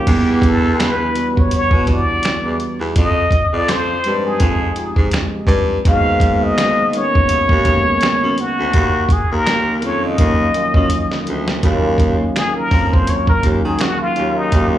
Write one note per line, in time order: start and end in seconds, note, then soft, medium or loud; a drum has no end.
0.00 0.49 G4 medium
0.06 1.31 E2 loud
0.06 1.09 E3 loud
0.06 1.09 G3 medium
0.06 1.09 B3 medium
0.06 1.10 D4 medium
0.06 1.10 F#5 loud
0.06 kick medium
0.06 closed hi-hat medium
0.06 crash medium
0.42 kick medium
0.42 closed hi-hat medium
0.47 0.84 A4 medium
0.80 1.41 B4 medium
0.80 finger snap medium
0.80 snare loud
0.80 closed hi-hat medium
1.14 1.32 E3 medium
1.14 1.33 G3 medium
1.14 1.33 B3 medium
1.14 1.34 D4 medium
1.14 1.34 F#4 medium
1.14 closed hi-hat medium
1.34 1.84 E3 medium
1.34 1.84 G3 medium
1.34 1.84 B3 medium
1.34 1.85 D4 medium
1.34 1.85 F#4 medium
1.34 kick medium
1.39 1.53 C#5 medium
1.51 1.60 B2 soft
1.51 closed hi-hat medium
1.56 1.92 C#5 medium
1.71 2.03 B2 medium
1.71 kick medium
1.86 2.95 E3 medium
1.86 2.96 G3 medium
1.86 2.96 B3 medium
1.86 2.96 D4 medium
1.86 2.97 F#4 medium
1.86 kick medium
1.86 closed hi-hat medium
1.91 2.61 D5 loud
2.23 2.32 E2 soft
2.23 finger snap medium
2.23 snare loud
2.23 closed hi-hat medium
2.44 2.58 E2 medium
2.60 closed hi-hat medium
2.80 2.94 E2 medium
2.96 3.28 F2 medium
2.96 3.55 D#5 medium
2.96 kick loud
2.96 closed hi-hat medium
3.31 kick medium
3.31 closed hi-hat medium
3.53 3.98 F2 medium
3.53 3.71 D5 loud
3.68 4.26 C5 loud
3.68 finger snap medium
3.68 snare loud
3.68 closed hi-hat medium
4.04 4.36 G2 medium
4.04 4.23 F3 medium
4.04 4.23 G#3 medium
4.04 4.23 C4 medium
4.04 4.24 D#4 medium
4.04 4.24 G4 medium
4.04 closed hi-hat medium
4.25 4.74 F3 medium
4.25 4.74 G#3 medium
4.25 4.74 C4 medium
4.25 4.75 D#4 medium
4.25 4.97 G#4 medium
4.25 4.75 G5 medium
4.40 4.72 F2 medium
4.40 kick medium
4.40 closed hi-hat medium
4.76 5.79 F3 medium
4.76 5.79 G#3 medium
4.76 5.79 C4 medium
4.76 5.80 D#4 medium
4.76 4.85 F4 medium
4.76 closed hi-hat medium
4.86 5.83 G4 medium
4.96 5.11 G#2 medium
4.96 kick medium
5.11 finger snap medium
5.11 snare loud
5.11 closed hi-hat medium
5.47 5.79 G2 loud
5.47 kick medium
5.47 closed hi-hat medium
5.85 7.09 G#2 medium
5.85 6.87 D#3 loud
5.85 6.88 G#3 medium
5.85 6.88 A#3 medium
5.85 6.88 B3 medium
5.85 6.89 F#4 loud
5.85 6.45 F5 loud
5.85 kick medium
5.85 closed hi-hat medium
6.20 kick medium
6.20 closed hi-hat medium
6.44 6.95 D#5 loud
6.58 finger snap medium
6.58 snare loud
6.58 closed hi-hat medium
6.93 7.11 D#3 medium
6.93 7.12 G#3 medium
6.93 7.12 A#3 medium
6.93 7.13 B3 medium
6.93 7.13 C#4 medium
6.93 8.42 C#5 loud
6.93 closed hi-hat medium
7.12 7.62 D#3 medium
7.12 7.63 G#3 medium
7.12 7.63 A#3 medium
7.12 7.63 B3 medium
7.12 7.64 F#4 medium
7.12 kick medium
7.29 7.38 D#2 soft
7.29 closed hi-hat medium
7.49 7.81 D#2 medium
7.49 kick medium
7.65 8.74 D#3 medium
7.65 8.74 G#3 medium
7.65 8.74 A#3 medium
7.65 8.75 B3 medium
7.65 8.75 C#4 medium
7.65 kick medium
7.65 closed hi-hat medium
8.01 8.11 F#2 soft
8.01 finger snap medium
8.01 snare loud
8.01 closed hi-hat medium
8.23 8.37 F#2 medium
8.38 9.14 F#4 medium
8.38 closed hi-hat medium
8.59 8.73 D2 medium
8.73 9.06 D#2 loud
8.73 kick medium
8.73 closed hi-hat medium
9.09 kick loud
9.09 closed hi-hat medium
9.13 9.31 G#4 medium
9.31 9.85 D#2 medium
9.31 9.87 A#4 loud
9.46 finger snap medium
9.46 snare loud
9.46 closed hi-hat medium
9.82 10.15 F2 medium
9.82 10.00 D#3 medium
9.82 10.01 F#3 medium
9.82 10.01 A#3 medium
9.82 10.01 C#4 medium
9.82 10.02 F4 medium
9.82 10.07 C#5 medium
9.82 closed hi-hat medium
10.01 10.51 D#3 medium
10.01 10.08 F3 soft
10.01 10.52 A#3 medium
10.01 10.52 C#4 medium
10.01 10.53 F4 medium
10.06 10.55 F#3 medium
10.06 11.29 D#5 medium
10.18 10.50 D#2 medium
10.18 kick medium
10.18 closed hi-hat medium
10.54 11.57 D#3 medium
10.54 10.62 F3 soft
10.54 11.57 A#3 medium
10.54 11.58 C#4 medium
10.54 11.58 F4 medium
10.54 closed hi-hat medium
10.61 11.60 F#3 medium
10.74 10.89 F#2 medium
10.74 kick medium
10.90 closed hi-hat medium
11.11 snare medium
11.27 11.59 D2 medium
11.27 closed hi-hat medium
11.48 snare medium
11.63 12.26 D#2 loud
11.63 12.65 D#3 loud
11.63 12.66 F#3 loud
11.63 12.66 A#3 loud
11.63 12.66 C#4 loud
11.63 11.71 D#4 medium
11.63 kick medium
11.63 closed hi-hat medium
11.72 12.70 F4 loud
11.98 kick medium
11.98 closed hi-hat medium
12.36 12.58 G#4 medium
12.36 finger snap medium
12.36 snare loud
12.36 closed hi-hat medium
12.57 12.95 A#4 loud
12.71 13.20 F2 medium
12.71 13.40 D#3 medium
12.71 13.40 A#3 medium
12.71 13.41 C#4 medium
12.71 13.41 F4 medium
12.71 13.40 F#4 medium
12.71 kick medium
12.71 open hi-hat soft
12.93 13.11 C5 medium
12.93 kick medium
13.07 13.28 C#5 medium
13.07 closed hi-hat medium
13.27 13.45 A#4 medium
13.27 kick medium
13.43 13.61 D#2 medium
13.43 14.12 D#3 medium
13.43 14.12 F#3 medium
13.43 14.13 A#3 medium
13.43 14.13 C#4 medium
13.43 14.13 G#4 medium
13.43 kick medium
13.43 closed hi-hat medium
13.65 13.79 D#3 medium
13.65 13.83 G#4 medium
13.79 14.03 F#4 medium
13.79 finger snap medium
13.79 snare loud
13.79 closed hi-hat medium
14.00 14.07 D#2 soft
14.00 14.39 F4 loud
14.16 14.48 D#2 medium
14.16 14.50 D#3 medium
14.16 14.50 F#3 medium
14.16 14.51 A#3 medium
14.16 14.51 C#4 medium
14.16 14.52 F4 medium
14.16 closed hi-hat medium
14.37 14.73 D#4 medium
14.52 14.78 D#2 medium
14.52 14.78 D#3 loud
14.52 14.78 F#3 loud
14.52 14.78 A#3 medium
14.52 14.78 C#4 medium
14.52 14.60 E4 medium
14.52 kick medium
14.52 closed hi-hat medium
14.61 14.78 F4 loud
14.74 14.78 C#4 medium